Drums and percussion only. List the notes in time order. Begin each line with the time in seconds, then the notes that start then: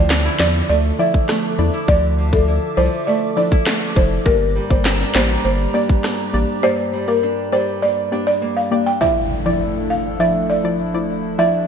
0.10 snare, clap
0.40 snare, clap
1.14 kick
1.29 cross-stick, snare
1.88 kick
2.33 kick
3.52 kick
3.67 cross-stick, snare, clap
3.96 kick
4.26 kick
4.70 kick
4.85 snare, clap
5.15 snare, clap
5.89 kick
6.04 cross-stick, snare